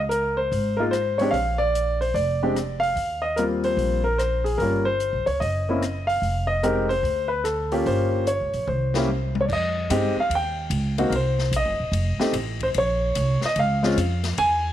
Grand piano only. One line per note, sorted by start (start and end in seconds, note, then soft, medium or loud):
0.09 0.38 A#4 medium
0.37 0.75 C5 medium
0.77 0.91 G#3 medium
0.77 0.92 A#3 medium
0.77 0.92 D#4 medium
0.77 0.92 F4 medium
0.77 0.82 A#4 medium
0.91 1.19 C5 medium
1.18 1.32 G#3 medium
1.18 1.33 C4 medium
1.18 1.33 D4 medium
1.18 1.33 G4 medium
1.18 1.33 C#5 medium
1.31 1.60 F5 medium
1.58 1.97 D5 medium
2.01 2.14 C5 medium
2.14 2.78 D5 medium
2.43 2.55 G#3 medium
2.43 2.55 C4 medium
2.43 2.55 D4 medium
2.43 2.55 G4 medium
2.80 3.23 F5 medium
3.22 3.37 D#5 medium
3.36 4.00 G3 soft
3.36 4.00 A#3 soft
3.36 4.00 C4 soft
3.36 4.00 F4 medium
3.36 3.42 A#4 medium
3.64 4.02 C5 medium
4.04 4.19 A#4 medium
4.18 4.44 C5 medium
4.44 4.60 G#4 medium
4.58 4.85 G3 soft
4.58 4.84 A#3 soft
4.58 4.83 A#4 medium
4.62 4.85 C#4 soft
4.62 4.85 F4 soft
4.85 5.24 C5 medium
5.26 5.40 C#5 medium
5.40 6.04 D#5 medium
5.69 5.81 A#3 medium
5.69 5.81 C4 soft
5.69 5.82 C#4 soft
5.69 5.82 E4 medium
6.07 6.46 F5 medium
6.47 6.63 D#5 medium
6.63 6.88 G#3 medium
6.63 6.88 C4 medium
6.63 6.88 D#4 medium
6.63 6.88 G4 medium
6.63 6.88 A#4 medium
6.89 7.28 C5 medium
7.28 7.43 B4 medium
7.44 7.87 A4 medium
7.72 8.24 A#3 medium
7.72 8.24 C#4 medium
7.72 8.24 F4 medium
7.72 8.24 G4 medium
7.87 8.28 C5 medium
8.27 8.65 C#5 medium
8.68 9.31 C5 medium
8.95 9.07 A#3 medium
8.95 9.08 C#4 medium
8.95 9.08 E4 medium
8.95 9.08 G4 medium
9.41 9.44 C#5 medium
9.45 9.50 D5 medium
9.53 10.20 D#5 medium
9.90 10.14 G#3 medium
9.90 10.14 C4 medium
9.90 10.14 D#4 medium
9.90 10.14 G4 medium
10.20 10.32 F5 medium
10.35 10.96 G5 medium
10.98 11.11 A#3 medium
10.98 11.11 C4 medium
10.98 11.11 D#4 medium
10.98 11.11 F#4 medium
11.09 11.13 A#4 medium
11.15 11.52 C5 medium
11.56 12.66 D#5 medium
12.20 12.33 A3 medium
12.20 12.33 C4 medium
12.20 12.33 D#4 medium
12.20 12.33 G4 medium
12.63 12.68 C5 medium
12.78 13.40 C#5 medium
13.46 13.58 D#5 medium
13.59 14.21 F5 medium
13.83 13.96 G#3 medium
13.83 13.96 C4 medium
13.83 13.96 C#4 medium
13.83 13.96 F4 medium
14.38 14.73 G#5 loud